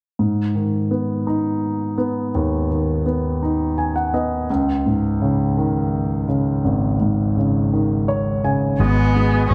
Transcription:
0.19 grand piano G#2
0.55 grand piano D#3
0.91 grand piano B3
1.27 grand piano D#4
1.98 grand piano B3
2.35 grand piano D#2
2.71 grand piano D#3
3.06 grand piano B3
3.43 grand piano D#4
3.78 grand piano G#5
3.96 grand piano F#5
4.14 grand piano B3 D#5
4.50 grand piano C#2
4.86 grand piano G#2
5.22 grand piano C#3
5.57 grand piano D#3
6.29 grand piano C#3
6.64 grand piano G#1
7.01 grand piano G#2
7.37 grand piano C#3
7.73 grand piano D#3
8.08 grand piano C#5
8.44 grand piano C#3 G#5
8.80 fingered electric bass G#1, grand piano G#3, tonewheel organ B3 F#4 G#4 D#5, cello B3
9.16 grand piano G#3
9.51 fingered electric bass G#1, cello C#4

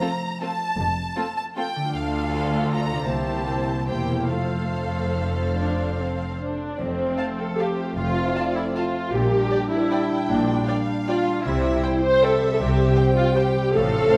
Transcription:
Already playing: harp F3 A3 F4 C5, violin section A#5
0.00 viola section A3 C4, violin section F4 A4
0.41 viola section A3 C4, violin section F4 A4 A5
0.78 double bass section F1, cello section F2
1.16 viola section A3 C4, violin section F4 A4
1.36 violin section A5
1.56 viola section A3 C4, violin section F4 A4 G5
1.76 harp D3
1.80 harp A3
1.85 harp F4
1.89 double bass section D2, viola section D4, violin section F4 A4, harp D5
1.94 cello section D2, viola section A3, violin section F5
2.72 violin section A#5
2.91 harp C3
2.96 harp A#3
3.00 harp G4
3.05 double bass section C2, viola section E4, violin section G4 C5, harp E5
3.09 cello section C2, viola section A#3, violin section A5
3.87 double bass section E1, cello section E2, viola section A#3 E4, violin section G4 C5 G5
4.11 harp F3
4.15 harp A3
4.19 harp F4
4.24 viola section A3 F4, violin section A4 C5, harp F5
4.29 double bass section F1, cello section F2, violin section F5
4.71 viola section A3
5.56 viola section D4
5.98 viola section C4
6.40 viola section D4
6.79 double bass section F1, cello section F2, harp F3, french horn section A3 C4, viola section C4, violin section A4
6.98 harp F4
7.17 harp A4, violin section F5 A5
7.39 viola section A4, harp F5
7.58 viola section G4, harp A4, violin section C5 F5 A5
7.79 harp F4
7.96 double bass section F1, cello section F2, harp F3, viola section F4, violin section F5
8.15 harp A3
8.35 harp A4, violin section D5 F5 A5
8.55 viola section E4, harp F5
8.73 viola section F4, harp A4, violin section C5 F5 A5
8.94 harp F4
9.12 double bass section A#1, cello section A#2, harp A#2, french horn section G3 D4, viola section G4, violin section A#4
9.31 harp G3
9.51 harp D5, violin section D5 G5
9.70 viola section E4, harp G4
9.90 harp D5, violin section D5 G5
10.10 harp G3
10.29 double bass section A#1, cello section A#2, harp A#2, viola section D4
10.49 harp A#3
10.67 violin section D5 F5 G5, harp D5
10.89 harp G4
11.08 viola section F4, violin section D5 G5, harp D5
11.27 harp G3
11.43 double bass section C2, cello section C3, harp C3, french horn section G3 C4, viola section E4, violin section E5
11.63 harp G3
11.83 violin section C5 G5, harp C5
12.03 harp G4, viola section C5
12.22 viola section A4, violin section C5 E5 G5, harp C5
12.41 harp G3
12.54 viola section A4
12.59 double bass section C2, cello section C3, harp C3, viola section G4
12.78 harp C4
12.96 violin section C5 G5, harp C5
13.16 viola section F4, harp G4
13.36 viola section G4, violin section C5 G5, harp C5
13.57 harp G3
13.73 double bass section A1, harp A2, cello section A2, french horn section F3 C4, viola section A4, violin section F5
13.93 harp A3
14.10 violin section C5 F5, harp C5

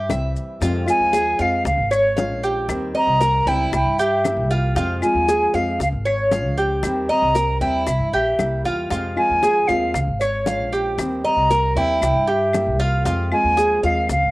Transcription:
Already playing: flute E5
0.09 upright bass C2, nylon-string guitar E3 G3 C4 E4, cuban tres E5, high bongo, low bongo, claves, maracas
0.36 maracas
0.60 upright bass F2, nylon-string guitar C3 F3 G#3 C4 F4, cuban tres F4, high bongo, maracas
0.86 nylon-string guitar F3 G#3 C4 F4, flute G#5, claves, maracas
1.00 upright bass D#2
1.13 cuban tres G#4, high bongo, maracas
1.39 upright bass F2, nylon-string guitar F3 G#3 C4 F4, cuban tres F5, flute F5, high bongo, maracas
1.65 upright bass C#2, flute F5, muted nylon-string guitar stroke, high bongo, maracas
1.77 upright bass G#1
1.91 cuban tres C#5, flute C#5, high bongo, claves, maracas
2.17 nylon-string guitar F3 G#3 C#4 F4, cuban tres F5, high bongo, low bongo, maracas
2.30 upright bass A#1
2.43 cuban tres G4, high bongo, maracas
2.68 upright bass D#2, nylon-string guitar D#3 G3 C4, high bongo, claves, maracas
2.94 nylon-string guitar G3 C4, cuban tres D#5, flute A#5
3.07 upright bass C2
3.21 cuban tres A#4, high bongo, maracas
3.46 upright bass C#2, nylon-string guitar G3 C4, cuban tres E4, flute G5, high bongo, maracas
3.72 upright bass C2, flute G5, muted nylon-string guitar stroke, high bongo, claves, maracas
3.85 upright bass G2
3.99 cuban tres G4, flute E5, high bongo, maracas
4.24 nylon-string guitar G3 A#3 E4 G4, high bongo, low bongo, claves, maracas
4.37 upright bass C2
4.51 cuban tres F4, high bongo, maracas
4.75 upright bass F2, nylon-string guitar C3 F3 G#3 C4 F4, cuban tres F4, high bongo, maracas
5.02 nylon-string guitar F3 G#3 C4 F4, flute G#5, claves, maracas
5.14 upright bass D#2
5.29 cuban tres G#4, high bongo, maracas
5.54 upright bass F2, nylon-string guitar F3 G#3 C4 F4, cuban tres F5, flute F5, high bongo, maracas
5.79 upright bass C#2, flute F5, muted nylon-string guitar stroke, high bongo, maracas
5.92 upright bass G#1
6.05 cuban tres C#5, flute C#5, high bongo, claves
6.31 nylon-string guitar F3 G#3 C#4 F4, cuban tres F5, high bongo, low bongo, maracas
6.44 upright bass C#2
6.58 cuban tres G4, high bongo, maracas
6.83 upright bass D#2, nylon-string guitar D#3 G3 C4, high bongo, claves, maracas
7.09 nylon-string guitar G3 C4, cuban tres D#5, flute A#5
7.22 upright bass C2
7.35 cuban tres A#4, high bongo, maracas
7.61 upright bass D#2, nylon-string guitar G3 C4, cuban tres E4, flute G5, high bongo, maracas
7.87 upright bass C2, flute E5, muted nylon-string guitar stroke, high bongo, claves, maracas
7.99 upright bass G2
8.13 upright bass A#1, cuban tres G4, flute E5, high bongo
8.39 upright bass C2, nylon-string guitar G3 A#3 E4 G4, high bongo, low bongo, claves, maracas
8.65 upright bass E2, cuban tres F4, high bongo, maracas
8.90 upright bass F2, nylon-string guitar C3 F3 G#3 C4 F4, cuban tres F4, high bongo, maracas
9.17 nylon-string guitar F3 G#3 C4 F4, flute G#5, claves
9.30 upright bass D#2
9.43 cuban tres G#4, high bongo, maracas
9.68 upright bass D#2, nylon-string guitar F3 G#3 C4 F4, flute F5, cuban tres F5, high bongo, maracas
9.94 upright bass C#2, flute F5, muted nylon-string guitar stroke, high bongo, maracas
10.07 upright bass G#1
10.19 flute C#5, cuban tres C#5, high bongo, claves, maracas
10.46 nylon-string guitar F3 G#3 C#4 F4, cuban tres F5, high bongo, low bongo, maracas
10.59 upright bass A#1
10.73 cuban tres G4, high bongo, maracas
10.98 upright bass D#2, nylon-string guitar D#3 G3 C4, high bongo, claves, maracas
11.24 nylon-string guitar G3 C4, cuban tres D#5, flute A#5
11.37 upright bass C2
11.51 cuban tres A#4, high bongo, maracas
11.75 upright bass D#2, nylon-string guitar G3 C4, cuban tres E4, flute G5, high bongo, maracas
12.01 upright bass C2, flute G5, muted nylon-string guitar stroke, high bongo, claves, maracas
12.14 upright bass G2
12.27 cuban tres G4, flute E5, high bongo
12.53 nylon-string guitar G3 A#3 E4 G4, high bongo, low bongo, claves, maracas
12.66 upright bass C2
12.80 cuban tres F4, high bongo, maracas
13.05 upright bass F2, nylon-string guitar C3 F3 G#3 C4 F4, cuban tres F4, high bongo, maracas
13.32 nylon-string guitar F3 G#3 C4 F4, flute G#5, claves
13.44 upright bass D#2
13.57 cuban tres G#4, high bongo, maracas
13.83 upright bass D#2, nylon-string guitar F3 G#3 C4 F4, cuban tres F5, flute F5, high bongo, maracas
14.09 upright bass C#2, flute F5, muted nylon-string guitar stroke, high bongo, maracas
14.22 upright bass G#1

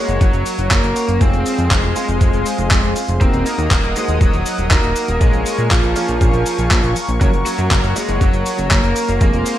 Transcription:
Already playing: lead electric guitar G#3 G#4, grand piano A#3 C#4 F#4 C#5, analog synth pad A#4 C#5 F#5 C#6
0.08 analog synth bass F#1, closed hi-hat, cabasa
0.21 analog synth bass F#1, lead electric guitar F#3 F#4, kick, closed hi-hat, cabasa
0.33 analog synth bass F#1, closed hi-hat, cabasa
0.46 open hi-hat, cabasa
0.58 analog synth bass F#1, closed hi-hat, cabasa
0.71 analog synth bass F#1, grand piano A#3 C#4 F#4 A#4, lead electric guitar A#3 A#4, kick, clap, closed hi-hat, cabasa
0.83 analog synth bass F#1, closed hi-hat, cabasa
0.96 open hi-hat, cabasa
1.08 analog synth bass F#1, closed hi-hat, cabasa
1.21 analog synth bass F1, grand piano G#3 C4 F4 G#4, lead electric guitar C4 C5, analog synth pad G#4 C5 F5 C6, kick, closed hi-hat, cabasa
1.33 analog synth bass F1, closed hi-hat, cabasa
1.46 open hi-hat, cabasa
1.58 analog synth bass F2, closed hi-hat, cabasa
1.71 analog synth bass F1, lead electric guitar G#3 G#4, kick, clap, closed hi-hat, cabasa
1.83 analog synth bass F1, closed hi-hat, cabasa
1.96 grand piano G#3 C4 F4 G#4, open hi-hat, cabasa
2.08 analog synth bass F1, closed hi-hat, cabasa
2.21 analog synth bass F1, kick, closed hi-hat, cabasa
2.33 analog synth bass F1, closed hi-hat, cabasa
2.46 open hi-hat, cabasa
2.58 analog synth bass F1, closed hi-hat, cabasa
2.71 analog synth bass F1, kick, clap, closed hi-hat, cabasa
2.83 analog synth bass F1, closed hi-hat, cabasa
2.96 grand piano G#3 C4 F4 G#4, open hi-hat, cabasa
3.08 analog synth bass F1, closed hi-hat, cabasa
3.21 analog synth bass D#1, grand piano A#3 D#4 F#4 A#4, lead electric guitar C4 C5, analog synth pad A#4 D#5 F#5 D#6, kick, closed hi-hat, cabasa
3.33 analog synth bass D#1, closed hi-hat, cabasa
3.46 lead electric guitar A#3 A#4, open hi-hat, cabasa
3.58 analog synth bass D#2, closed hi-hat, cabasa
3.71 analog synth bass D#1, kick, clap, closed hi-hat, cabasa
3.83 analog synth bass D#1, closed hi-hat, cabasa
3.96 lead electric guitar G#3 G#4, grand piano A#3 D#4 F#4 C5, open hi-hat, cabasa
4.08 analog synth bass D#1, closed hi-hat, cabasa
4.21 analog synth bass D#1, lead electric guitar F#3 F#4, kick, closed hi-hat, cabasa
4.33 analog synth bass D#1, closed hi-hat, cabasa
4.46 open hi-hat, cabasa
4.58 analog synth bass D#1, closed hi-hat, cabasa
4.71 analog synth bass D#1, grand piano A#3 D#4 F#4 A#4, lead electric guitar A#3 A#4, kick, clap, closed hi-hat, cabasa
4.83 analog synth bass D#1, closed hi-hat, cabasa
4.96 open hi-hat, cabasa
5.08 analog synth bass D#1, closed hi-hat, cabasa
5.21 analog synth bass A#1, lead electric guitar G#3 G#4, grand piano A#3 C#4 F4 G#4, analog synth pad F5 G#5 C#6, kick, closed hi-hat, cabasa
5.33 analog synth bass A#1, closed hi-hat, cabasa
5.46 open hi-hat, cabasa
5.58 analog synth bass A#2, closed hi-hat, cabasa
5.71 analog synth bass A#1, lead electric guitar F3 F4, kick, clap, closed hi-hat, cabasa
5.83 analog synth bass A#1, closed hi-hat, cabasa
5.96 grand piano A#3 C#4 F4 G#4, open hi-hat, cabasa
6.08 analog synth bass A#1, closed hi-hat, cabasa
6.21 analog synth bass A#1, kick, closed hi-hat, cabasa
6.33 analog synth bass A#1, closed hi-hat, cabasa
6.46 open hi-hat, cabasa
6.58 analog synth bass A#1, closed hi-hat, cabasa
6.71 analog synth bass A#1, kick, clap, closed hi-hat, cabasa
6.83 analog synth bass A#1, closed hi-hat, cabasa
6.96 open hi-hat, cabasa
7.09 analog synth bass A#1, closed hi-hat, cabasa
7.21 analog synth bass F#1, lead electric guitar F#3 F#4, grand piano A#3 C#4 F#4 A#4, analog synth pad C#5 F#5, kick, closed hi-hat, cabasa
7.33 analog synth bass F#1, closed hi-hat, cabasa
7.46 lead electric guitar F#3 F#4, open hi-hat, cabasa
7.58 analog synth bass F#2, closed hi-hat, cabasa
7.71 analog synth bass F#1, kick, clap, closed hi-hat, cabasa
7.83 analog synth bass F#1, closed hi-hat, cabasa
7.96 lead electric guitar G#3 G#4, grand piano A#3 C#4 F#4 C#5, open hi-hat, cabasa
8.09 analog synth bass F#1, closed hi-hat, cabasa
8.21 analog synth bass F#1, lead electric guitar F#3 F#4, kick, closed hi-hat, cabasa
8.33 analog synth bass F#1, closed hi-hat, cabasa
8.46 open hi-hat, cabasa
8.58 analog synth bass F#1, closed hi-hat, cabasa
8.71 analog synth bass F#1, grand piano A#3 C#4 F#4 A#4, lead electric guitar A#3 A#4, kick, clap, closed hi-hat, cabasa
8.83 analog synth bass F#1, closed hi-hat, cabasa
8.96 open hi-hat, cabasa
9.08 analog synth bass F#1, closed hi-hat, cabasa
9.21 analog synth bass F1, grand piano G#3 C4 F4 G#4, lead electric guitar A#3 A#4, analog synth pad G#4 C5 F5 C6, kick, closed hi-hat, cabasa
9.33 analog synth bass F1, closed hi-hat, cabasa
9.46 open hi-hat, cabasa

